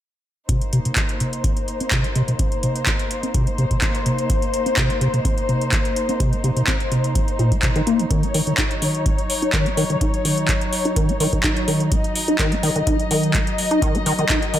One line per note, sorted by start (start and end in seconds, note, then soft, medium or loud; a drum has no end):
0.49 0.63 C3 loud
0.49 8.07 A#3 medium
0.49 14.59 D#4 medium
0.49 8.07 C5 medium
0.49 kick loud
0.49 closed hi-hat medium
0.61 0.65 C4 loud
0.61 closed hi-hat soft
0.73 0.80 C3 loud
0.73 closed hi-hat medium
0.85 0.91 C3 medium
0.85 closed hi-hat soft
0.96 1.07 C4 medium
0.96 kick loud
0.96 clap loud
0.96 closed hi-hat medium
1.09 closed hi-hat soft
1.20 1.46 C3 medium
1.20 closed hi-hat medium
1.33 closed hi-hat soft
1.44 1.48 G3 loud
1.44 kick loud
1.44 closed hi-hat medium
1.57 closed hi-hat soft
1.68 closed hi-hat soft
1.80 1.90 C4 medium
1.80 closed hi-hat soft
1.91 2.06 C3 loud
1.91 kick loud
1.91 clap loud
1.91 closed hi-hat medium
2.04 2.08 C4 loud
2.04 closed hi-hat soft
2.15 2.22 C3 loud
2.15 closed hi-hat medium
2.28 2.34 C3 medium
2.28 closed hi-hat soft
2.39 2.50 C4 medium
2.39 kick loud
2.39 closed hi-hat medium
2.52 closed hi-hat soft
2.63 2.88 C3 medium
2.63 closed hi-hat medium
2.76 closed hi-hat soft
2.86 2.91 G3 loud
2.86 kick loud
2.86 clap loud
2.86 closed hi-hat medium
2.99 closed hi-hat soft
3.11 closed hi-hat medium
3.23 3.33 C4 medium
3.23 closed hi-hat soft
3.34 3.49 C3 loud
3.34 kick loud
3.34 closed hi-hat medium
3.47 3.51 C4 loud
3.47 closed hi-hat soft
3.58 3.65 C3 loud
3.58 closed hi-hat soft
3.71 3.77 C3 medium
3.71 kick medium
3.71 closed hi-hat soft
3.82 3.92 C4 medium
3.82 kick loud
3.82 clap loud
3.82 closed hi-hat medium
3.95 closed hi-hat soft
4.06 4.31 C3 medium
4.06 closed hi-hat medium
4.18 closed hi-hat soft
4.30 4.34 G3 loud
4.30 kick loud
4.30 closed hi-hat medium
4.42 closed hi-hat soft
4.54 closed hi-hat medium
4.66 4.75 C4 medium
4.66 closed hi-hat soft
4.77 4.91 C3 loud
4.77 kick loud
4.77 clap loud
4.77 closed hi-hat medium
4.90 4.94 C4 loud
4.90 closed hi-hat soft
5.01 5.08 C3 loud
5.01 closed hi-hat medium
5.14 5.20 C3 medium
5.14 closed hi-hat soft
5.25 5.35 C4 medium
5.25 kick loud
5.25 closed hi-hat medium
5.38 closed hi-hat soft
5.49 5.74 C3 medium
5.49 closed hi-hat soft
5.61 closed hi-hat soft
5.72 5.77 G3 loud
5.72 kick loud
5.72 clap loud
5.72 closed hi-hat medium
5.85 closed hi-hat soft
5.96 closed hi-hat medium
6.09 6.18 C4 medium
6.09 closed hi-hat soft
6.20 6.34 C3 loud
6.20 kick loud
6.20 closed hi-hat medium
6.33 6.36 C4 loud
6.33 closed hi-hat soft
6.44 6.51 C3 loud
6.44 closed hi-hat medium
6.56 6.63 C3 medium
6.56 closed hi-hat soft
6.67 6.78 C4 medium
6.67 kick loud
6.67 clap loud
6.67 closed hi-hat medium
6.80 closed hi-hat soft
6.92 7.17 C3 medium
6.92 closed hi-hat medium
7.04 closed hi-hat soft
7.15 7.20 G3 loud
7.15 kick loud
7.15 closed hi-hat medium
7.28 closed hi-hat soft
7.39 7.53 A#2 loud
7.39 closed hi-hat soft
7.52 7.58 A#3 medium
7.52 kick medium
7.52 closed hi-hat soft
7.62 7.70 C3 medium
7.62 kick loud
7.62 clap loud
7.62 closed hi-hat medium
7.76 7.82 D#3 loud
7.76 closed hi-hat soft
7.87 8.01 A#3 loud
7.87 closed hi-hat medium
7.99 8.06 D#3 loud
7.99 closed hi-hat soft
8.11 8.25 D#3 loud
8.11 14.59 F#3 medium
8.11 11.88 C#5 medium
8.11 kick loud
8.11 closed hi-hat medium
8.23 8.27 D#4 loud
8.23 closed hi-hat soft
8.34 8.41 D#3 loud
8.34 open hi-hat loud
8.47 8.53 D#3 medium
8.47 closed hi-hat soft
8.58 8.69 D#4 medium
8.58 kick loud
8.58 clap loud
8.58 closed hi-hat medium
8.71 closed hi-hat soft
8.82 9.07 D#3 medium
8.82 open hi-hat medium
8.95 closed hi-hat soft
9.06 9.10 A#3 loud
9.06 kick loud
9.06 closed hi-hat medium
9.18 closed hi-hat soft
9.30 open hi-hat loud
9.42 9.52 D#4 medium
9.42 closed hi-hat soft
9.53 9.68 D#3 loud
9.53 kick loud
9.53 clap loud
9.53 closed hi-hat medium
9.66 9.70 D#4 loud
9.66 closed hi-hat soft
9.77 9.84 D#3 loud
9.77 open hi-hat medium
9.90 9.96 D#3 medium
9.90 closed hi-hat soft
10.01 10.12 D#4 medium
10.01 kick loud
10.01 closed hi-hat medium
10.14 closed hi-hat soft
10.25 10.50 D#3 medium
10.25 open hi-hat loud
10.38 closed hi-hat soft
10.48 10.53 A#3 loud
10.48 kick loud
10.48 clap loud
10.48 closed hi-hat medium
10.61 closed hi-hat soft
10.73 open hi-hat medium
10.85 10.95 D#4 medium
10.85 closed hi-hat soft
10.96 11.11 D#3 loud
10.96 kick loud
10.96 closed hi-hat medium
11.09 11.13 D#4 loud
11.09 closed hi-hat soft
11.20 11.27 D#3 loud
11.20 open hi-hat loud
11.33 11.39 D#3 medium
11.33 kick medium
11.33 closed hi-hat soft
11.43 11.54 D#4 medium
11.43 kick loud
11.43 clap loud
11.43 closed hi-hat medium
11.57 closed hi-hat soft
11.68 11.93 D#3 medium
11.68 open hi-hat medium
11.80 closed hi-hat soft
11.92 11.96 A#3 loud
11.92 14.59 D#5 medium
11.92 kick loud
11.92 closed hi-hat medium
12.04 closed hi-hat soft
12.15 open hi-hat medium
12.28 12.37 D#4 medium
12.28 closed hi-hat soft
12.39 12.53 D#3 loud
12.39 kick loud
12.39 clap loud
12.39 closed hi-hat medium
12.52 12.56 D#4 loud
12.52 closed hi-hat soft
12.63 12.70 D#3 loud
12.63 open hi-hat medium
12.76 12.82 D#3 medium
12.76 closed hi-hat soft
12.87 12.97 D#4 medium
12.87 kick loud
12.87 closed hi-hat medium
12.99 closed hi-hat soft
13.11 13.36 D#3 medium
13.11 open hi-hat loud
13.23 closed hi-hat soft
13.34 13.39 A#3 loud
13.34 kick loud
13.34 clap loud
13.34 closed hi-hat medium
13.47 closed hi-hat soft
13.58 open hi-hat medium
13.71 13.80 D#4 medium
13.71 closed hi-hat soft
13.82 13.96 D#3 loud
13.82 kick loud
13.82 closed hi-hat medium
13.95 13.98 D#4 loud
13.95 closed hi-hat soft
14.06 14.13 D#3 loud
14.06 open hi-hat loud
14.19 14.25 D#3 medium
14.19 closed hi-hat soft
14.29 14.40 D#4 medium
14.29 kick loud
14.29 clap loud
14.29 closed hi-hat loud
14.42 closed hi-hat soft
14.54 14.59 D#3 medium
14.54 open hi-hat medium